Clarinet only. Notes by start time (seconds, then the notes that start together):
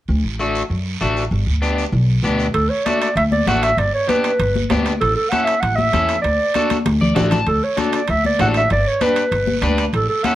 2.54 A4
2.70 C#5
2.86 D5
3.02 D5
3.17 E5
3.32 D5
3.48 F#5
3.63 E5
3.79 D5
3.94 C#5
4.09 B4
5.01 A4
5.16 A4
5.30 F#5
5.45 E5
5.61 F#5
5.76 E5
6.22 D5
7.48 A4
7.64 C#5
7.79 D5
7.95 D5
8.10 E5
8.26 D5
8.41 F#5
8.57 E5
8.72 D5
8.87 C#5
9.02 B4
9.95 A4
10.09 A4
10.25 F#5